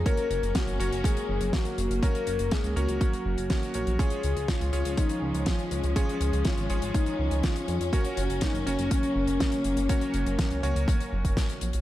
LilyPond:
<<
  \new Staff \with { instrumentName = "Electric grand piano" } { \time 4/4 \key ges \lydian \tempo 4 = 122 <des' ges' bes' des''>4. <des' ges' bes' des''>2~ <des' ges' bes' des''>8 | <des' ges' bes' des''>4. <des' ges' bes' des''>4. <des' ges' bes' des''>8 <des' ges' bes' des''>8 | <des' f' aes' des''>4. <des' f' aes' des''>2~ <des' f' aes' des''>8 | <des' f' aes' des''>4. <des' f' aes' des''>2~ <des' f' aes' des''>8 |
<des' ges' bes' des''>4. <des' ges' bes' des''>2~ <des' ges' bes' des''>8 | <des' ges' bes' des''>4. <des' ges' bes' des''>2~ <des' ges' bes' des''>8 | }
  \new Staff \with { instrumentName = "Soft synth lead" } { \time 4/4 \key ges \lydian bes'4 ges'4 aes'4 ges'4 | bes'4 aes'8 ges'4. ges'4 | aes'4 f'4 ees'4 f'4 | aes'4 f'4 ees'4 f'4 |
ges'4 ees'8 des'2~ des'8~ | des'2. r4 | }
  \new Staff \with { instrumentName = "String section" } { \time 4/4 \key ges \lydian << { des'1 | r1 | des'1~ | des'1~ |
des'1~ | des'1 | } \\ { <ges bes>1~ | <ges bes>1 | <f aes>1~ | <f aes>1 |
<ges bes>1~ | <ges bes>1 | } >> }
  \new Staff \with { instrumentName = "Analog synth bass" } { \clef bass \time 4/4 \key ges \lydian r8 ges,,16 ges,,16 r16 ges,,16 ges,,16 ges,,16 r8 ges,,16 ges,,16 r8 ges,,16 ges,,16 | r8 ges,,16 ges,,16 r16 des,16 des,16 des,16 r8 ges,,16 ges,,16 r8 bes,,16 bes,,16 | r8 des,16 des,16 r16 des,16 des,16 des,16 r8 des,16 des,16 r8 des,16 des,16 | r8 des,16 des,16 r16 aes,,16 aes,,16 aes,,16 r8 des,16 des,16 r8 f,16 f,16 |
r8 ges,,16 ges,,16 r16 ges,,16 ges,,16 ges,,16 r8 ges,,16 ges,,16 r8 ges,,16 ges,,16 | r8 ges,,16 ges,,16 r16 des,16 des,16 des,16 r8 ges,,16 ges,,16 r8 bes,,16 bes,,16 | }
  \new DrumStaff \with { instrumentName = "Drums" } \drummode { \time 4/4 <hh bd>16 hh16 hh16 hh16 <hh bd sn>16 hh16 hh16 hh16 <hh bd>16 hh8 hh16 <hh bd sn>16 hh16 hh16 hh16 | <hh bd>16 hh16 hh16 hh16 <hh bd sn>16 hh16 hh16 hh16 <hh bd>16 hh8 hh16 <hh bd sn>16 hh16 hh16 hh16 | <hh bd>16 hh16 hh16 hh16 <hh bd sn>16 hh16 hh16 hh16 <hh bd>16 hh8 hh16 <hh bd sn>16 hh16 hh16 hh16 | <hh bd>16 hh16 hh16 hh16 <hh bd sn>16 hh16 hh16 hh16 <hh bd>16 hh8 hh16 <hh bd sn>16 hh16 hh16 hh16 |
<hh bd>16 hh16 hh16 hh16 <hh bd sn>16 hh16 hh16 hh16 <hh bd>16 hh8 hh16 <hh bd sn>16 hh16 hh16 hh16 | <hh bd>16 hh16 hh16 hh16 <hh bd sn>16 hh16 hh16 hh16 <hh bd>16 hh8 <hh bd>16 <hh bd sn>16 hh16 hh16 hh16 | }
>>